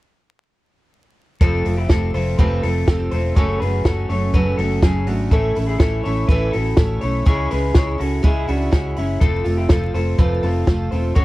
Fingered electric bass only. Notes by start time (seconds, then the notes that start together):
1.41 F1
1.66 F1
1.90 F1
2.14 F1
2.39 F1
2.64 F1
2.88 F1
3.12 E1
3.37 F#1
3.61 F#1
3.85 F#1
4.09 F#1
4.34 F#1
4.58 F#1
4.83 F#1
5.07 G#1
5.32 A1
5.57 A1
5.80 A1
6.06 A1
6.29 A1
6.55 A1
6.78 A1
7.03 B1
7.27 C#2
7.52 C#2
7.75 C#2
8.00 C#2
8.24 C#2
8.49 C#2
8.73 C#2
8.98 F#1
9.22 F1
9.46 F1
9.70 F1
9.94 F1
10.19 F1
10.43 F1
10.68 F1
10.92 E1
11.16 F#1